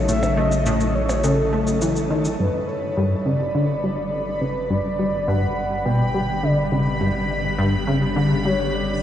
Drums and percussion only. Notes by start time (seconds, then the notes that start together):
0.09 shaker
0.23 percussion blips, shaker
0.52 shaker
0.66 shaker
0.80 shaker
1.09 percussion blips, shaker
1.24 shaker
1.67 shaker
1.82 shaker
1.96 shaker
2.25 shaker